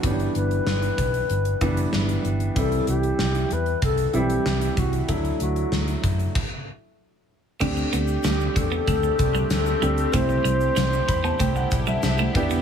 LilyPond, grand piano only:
\new Staff \with { instrumentName = "Grand piano" } { \time 4/4 \key d \mixolydian \tempo 4 = 95 <e g b cis' d'>4. r4 <e g b d'>4 r8 | <e g c' e'>4. r4 <e g c' e'>4 r8 | <fis a d' e'>4. r2 r8 | <a c' d' g'>4. r2 <a c' d' g'>8 |
<a c' e' g'>4. b''16 a''16 g''16 fis''8 e''16 e''8 <b d' e' g' d''>8 | }